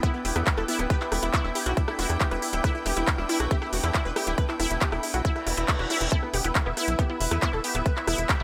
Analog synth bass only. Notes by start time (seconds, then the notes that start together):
0.25 E1
0.36 E2
0.57 E1
0.79 D1
1.12 E1
1.23 E1
1.44 E1
1.66 B1
1.99 E1
2.10 E2
2.31 E1
2.53 D1
2.86 E1
2.97 E1
3.18 E1
3.40 B1
3.73 E1
3.84 E2
4.05 E1
4.27 D1
4.60 E1
4.70 E1
4.92 E1
5.14 B1
5.47 E1
5.57 E1
5.79 E1
6.01 E1
6.34 E1
6.44 E1
6.66 E1
6.88 B1
7.20 E1
7.31 E2
7.53 E1
7.75 D1
8.07 E1
8.18 E1
8.40 E1